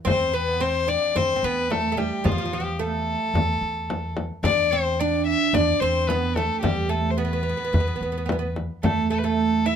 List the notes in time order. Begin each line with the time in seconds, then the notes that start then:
0.05 E2 C4 C5, frame drum
0.34 B3 B4
0.60 C4 C5
0.88 D4 D5
1.15 E2 C4 C5, frame drum
1.36 C4
1.43 E2 B3 B4
1.70 A3 A4, frame drum
1.92 A3
1.97 G3 G4, frame drum
2.24 E2 F3 F4, frame drum
2.32 F3
2.38 F3
2.45 F3
2.53 F3 G4
2.60 F3
2.79 A3 A4
3.34 E2, frame drum
3.61 E2
3.90 frame drum
4.17 frame drum
4.43 E2 D4 D5, frame drum
4.71 C4 C5
5.00 D4 D5
5.27 E5
5.53 E2 D4 D5, frame drum
5.80 E2 C4 C5
6.08 B3 B4, frame drum
6.36 A3 A4, frame drum
6.62 E2 G3 G4, frame drum
6.89 A3 A4
7.11 C5
7.17 B3 B4
7.25 B3
7.33 B3
7.43 B3
7.49 B3
7.57 B3
7.65 B3
7.73 E2 B3, frame drum
7.80 B3
7.88 B3
7.96 B3
8.01 E2 B3
8.12 B3
8.18 B3
8.26 B3, frame drum
8.32 B3
8.39 B3
8.56 frame drum
8.83 E2 A3 A4, frame drum
9.10 A3 A4
9.18 B4
9.24 A3 A4
9.66 E4 E5